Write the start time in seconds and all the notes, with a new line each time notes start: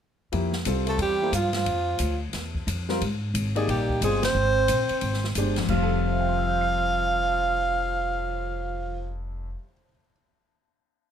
0.32 F2 F3 A#3 E4 G4, ride
0.53 snare
0.65 C2 G3 C4 F4 A4, hi-hat pedal, ride
0.86 A3 A4, ride
0.98 E2 G3, ride
1.02 G4
1.22 A#3 E4 A4 C5
1.32 G2 F3 F4, hi-hat pedal, ride
1.53 F3 F4, snare, ride
1.66 F2, ride
1.99 D2, hi-hat pedal, ride
2.33 E2, snare, ride
2.55 kick
2.67 F2, hi-hat pedal, ride
2.89 G3 C4 F4 A#4, snare
3.02 G#2, ride
3.34 G#1, hi-hat pedal, ride
3.55 G#3 A#3 D#4 G4 G#4 D5, ride
3.68 A#1 G3 G4, ride
3.89 kick
4.01 G1 G3 G#3 C4 F4 G#4 C5, hi-hat pedal, ride
4.23 C4 C5, snare, ride
4.35 G#1
4.68 A#1, hi-hat pedal, ride
4.89 muted upright bass stroke, ride
5.01 G#1, ride
5.14 snare
5.24 snare
5.35 G1 G#3 D4 G4 C5, hi-hat pedal, ride
5.56 F2, snare, ride
5.65 F3, crash
5.69 F1 F3 G3 F5, kick
5.77 F4
5.83 A4
5.90 cymbal swell
6.04 C5
6.12 E5
6.20 G5
6.29 C6
6.39 E6
6.50 G6
6.61 C7